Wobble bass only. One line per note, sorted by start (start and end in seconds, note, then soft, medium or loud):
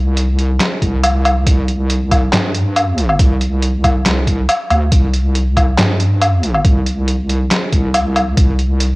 0.00 0.59 C2 loud
0.82 1.45 C2 loud
1.46 2.31 C2 loud
2.33 3.18 G2 loud
3.19 4.04 C2 loud
4.06 4.47 C2 medium
4.70 4.90 D2 loud
4.92 5.77 C2 loud
5.78 6.63 G2 loud
6.65 7.49 C2 loud
7.72 8.36 C2 loud
8.37 8.96 C2 loud